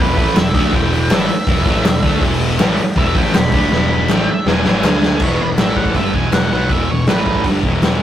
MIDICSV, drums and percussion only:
0, 0, Header, 1, 2, 480
1, 0, Start_track
1, 0, Tempo, 372902
1, 956, Time_signature, 4, 2, 24, 8
1, 10330, End_track
2, 0, Start_track
2, 0, Title_t, "Drums"
2, 220, Note_on_c, 9, 36, 104
2, 224, Note_on_c, 9, 46, 57
2, 349, Note_off_c, 9, 36, 0
2, 352, Note_off_c, 9, 46, 0
2, 354, Note_on_c, 9, 38, 35
2, 460, Note_on_c, 9, 46, 81
2, 468, Note_on_c, 9, 39, 89
2, 472, Note_off_c, 9, 38, 0
2, 472, Note_on_c, 9, 38, 110
2, 589, Note_off_c, 9, 46, 0
2, 597, Note_off_c, 9, 39, 0
2, 600, Note_off_c, 9, 38, 0
2, 698, Note_on_c, 9, 36, 113
2, 702, Note_on_c, 9, 46, 63
2, 826, Note_off_c, 9, 36, 0
2, 831, Note_off_c, 9, 46, 0
2, 936, Note_on_c, 9, 36, 108
2, 941, Note_on_c, 9, 46, 78
2, 1065, Note_off_c, 9, 36, 0
2, 1070, Note_off_c, 9, 46, 0
2, 1186, Note_on_c, 9, 46, 57
2, 1314, Note_off_c, 9, 46, 0
2, 1420, Note_on_c, 9, 46, 90
2, 1427, Note_on_c, 9, 39, 98
2, 1432, Note_on_c, 9, 38, 111
2, 1549, Note_off_c, 9, 46, 0
2, 1555, Note_off_c, 9, 39, 0
2, 1560, Note_off_c, 9, 38, 0
2, 1654, Note_on_c, 9, 46, 69
2, 1783, Note_off_c, 9, 46, 0
2, 1889, Note_on_c, 9, 46, 93
2, 1892, Note_on_c, 9, 36, 123
2, 2017, Note_off_c, 9, 46, 0
2, 2021, Note_off_c, 9, 36, 0
2, 2131, Note_on_c, 9, 36, 112
2, 2132, Note_on_c, 9, 46, 63
2, 2260, Note_off_c, 9, 36, 0
2, 2261, Note_off_c, 9, 46, 0
2, 2261, Note_on_c, 9, 38, 32
2, 2368, Note_on_c, 9, 46, 91
2, 2379, Note_off_c, 9, 38, 0
2, 2379, Note_on_c, 9, 38, 117
2, 2395, Note_on_c, 9, 39, 99
2, 2497, Note_off_c, 9, 46, 0
2, 2503, Note_off_c, 9, 38, 0
2, 2503, Note_on_c, 9, 38, 33
2, 2524, Note_off_c, 9, 39, 0
2, 2609, Note_on_c, 9, 36, 103
2, 2609, Note_on_c, 9, 46, 65
2, 2631, Note_off_c, 9, 38, 0
2, 2737, Note_off_c, 9, 46, 0
2, 2738, Note_off_c, 9, 36, 0
2, 2843, Note_on_c, 9, 46, 80
2, 2848, Note_on_c, 9, 36, 99
2, 2971, Note_off_c, 9, 46, 0
2, 2977, Note_off_c, 9, 36, 0
2, 3085, Note_on_c, 9, 46, 66
2, 3214, Note_off_c, 9, 46, 0
2, 3333, Note_on_c, 9, 46, 84
2, 3345, Note_on_c, 9, 38, 103
2, 3345, Note_on_c, 9, 39, 97
2, 3462, Note_off_c, 9, 46, 0
2, 3473, Note_off_c, 9, 38, 0
2, 3474, Note_off_c, 9, 39, 0
2, 3561, Note_on_c, 9, 46, 64
2, 3690, Note_off_c, 9, 46, 0
2, 3808, Note_on_c, 9, 46, 89
2, 3811, Note_on_c, 9, 36, 116
2, 3937, Note_off_c, 9, 46, 0
2, 3939, Note_off_c, 9, 36, 0
2, 4054, Note_on_c, 9, 36, 109
2, 4058, Note_on_c, 9, 46, 61
2, 4183, Note_off_c, 9, 36, 0
2, 4187, Note_off_c, 9, 46, 0
2, 4189, Note_on_c, 9, 38, 33
2, 4291, Note_on_c, 9, 46, 80
2, 4303, Note_off_c, 9, 38, 0
2, 4303, Note_on_c, 9, 38, 115
2, 4312, Note_on_c, 9, 39, 106
2, 4420, Note_off_c, 9, 46, 0
2, 4432, Note_off_c, 9, 38, 0
2, 4436, Note_on_c, 9, 38, 31
2, 4440, Note_off_c, 9, 39, 0
2, 4532, Note_on_c, 9, 46, 60
2, 4533, Note_on_c, 9, 36, 100
2, 4565, Note_off_c, 9, 38, 0
2, 4661, Note_off_c, 9, 46, 0
2, 4662, Note_off_c, 9, 36, 0
2, 4785, Note_on_c, 9, 38, 61
2, 4914, Note_off_c, 9, 38, 0
2, 5266, Note_on_c, 9, 38, 78
2, 5267, Note_on_c, 9, 39, 109
2, 5395, Note_off_c, 9, 38, 0
2, 5396, Note_off_c, 9, 39, 0
2, 5749, Note_on_c, 9, 38, 96
2, 5878, Note_off_c, 9, 38, 0
2, 5981, Note_on_c, 9, 38, 84
2, 6110, Note_off_c, 9, 38, 0
2, 6233, Note_on_c, 9, 39, 95
2, 6235, Note_on_c, 9, 38, 108
2, 6361, Note_off_c, 9, 39, 0
2, 6363, Note_off_c, 9, 38, 0
2, 6470, Note_on_c, 9, 38, 95
2, 6598, Note_off_c, 9, 38, 0
2, 6690, Note_on_c, 9, 49, 102
2, 6697, Note_on_c, 9, 36, 100
2, 6819, Note_off_c, 9, 49, 0
2, 6826, Note_off_c, 9, 36, 0
2, 7169, Note_on_c, 9, 46, 55
2, 7180, Note_on_c, 9, 38, 100
2, 7193, Note_on_c, 9, 39, 97
2, 7298, Note_off_c, 9, 46, 0
2, 7309, Note_off_c, 9, 38, 0
2, 7321, Note_off_c, 9, 39, 0
2, 7414, Note_on_c, 9, 36, 93
2, 7532, Note_off_c, 9, 36, 0
2, 7532, Note_on_c, 9, 36, 87
2, 7649, Note_on_c, 9, 46, 58
2, 7654, Note_off_c, 9, 36, 0
2, 7654, Note_on_c, 9, 36, 104
2, 7778, Note_off_c, 9, 46, 0
2, 7783, Note_off_c, 9, 36, 0
2, 7896, Note_on_c, 9, 36, 87
2, 8025, Note_off_c, 9, 36, 0
2, 8135, Note_on_c, 9, 46, 58
2, 8147, Note_on_c, 9, 38, 112
2, 8151, Note_on_c, 9, 39, 95
2, 8264, Note_off_c, 9, 46, 0
2, 8275, Note_off_c, 9, 38, 0
2, 8279, Note_off_c, 9, 39, 0
2, 8614, Note_on_c, 9, 46, 53
2, 8620, Note_on_c, 9, 36, 101
2, 8743, Note_off_c, 9, 46, 0
2, 8748, Note_off_c, 9, 36, 0
2, 9095, Note_on_c, 9, 46, 61
2, 9107, Note_on_c, 9, 38, 103
2, 9121, Note_on_c, 9, 39, 96
2, 9224, Note_off_c, 9, 46, 0
2, 9236, Note_off_c, 9, 38, 0
2, 9250, Note_off_c, 9, 39, 0
2, 9344, Note_on_c, 9, 36, 90
2, 9462, Note_off_c, 9, 36, 0
2, 9462, Note_on_c, 9, 36, 88
2, 9575, Note_on_c, 9, 46, 63
2, 9582, Note_off_c, 9, 36, 0
2, 9582, Note_on_c, 9, 36, 107
2, 9704, Note_off_c, 9, 46, 0
2, 9711, Note_off_c, 9, 36, 0
2, 9825, Note_on_c, 9, 36, 89
2, 9954, Note_off_c, 9, 36, 0
2, 10064, Note_on_c, 9, 46, 63
2, 10075, Note_on_c, 9, 38, 121
2, 10087, Note_on_c, 9, 39, 85
2, 10193, Note_off_c, 9, 46, 0
2, 10204, Note_off_c, 9, 38, 0
2, 10215, Note_off_c, 9, 39, 0
2, 10330, End_track
0, 0, End_of_file